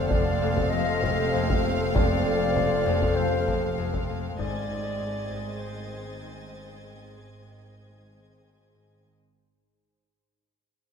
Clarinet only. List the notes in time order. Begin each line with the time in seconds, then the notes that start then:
Already playing: C5
0.10 D5
0.70 D#5
1.94 D5
3.16 C5
4.38 D5
5.60 C5
6.84 G#4